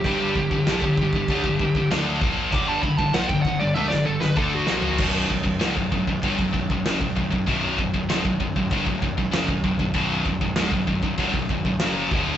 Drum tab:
CC |x---x---x---x---|x---x-----------|x---x---x---x---|x---x---x---x---|
SD |----o-------o---|----o----o-o--o-|----o-------o---|----o-------o---|
T1 |----------------|--------o-------|----------------|----------------|
FT |----------------|---------------o|----------------|----------------|
BD |o-oo-ooooooo--o-|o-oo-oo-----o---|o-oo-ooooooo-ooo|o-oo-ooooooo-ooo|

CC |x---x---x---x---|
SD |----o-------o---|
T1 |----------------|
FT |----------------|
BD |o-oo-ooooooo--o-|